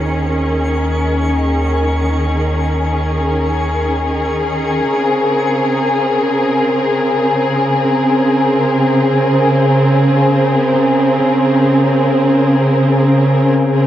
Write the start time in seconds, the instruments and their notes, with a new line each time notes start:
Already playing: sub bass D#2, string section D#3 C4 C#4 G#4 A#4, synth texture C#6
4.87 string section C#3, synth drone C#3
4.99 string section C4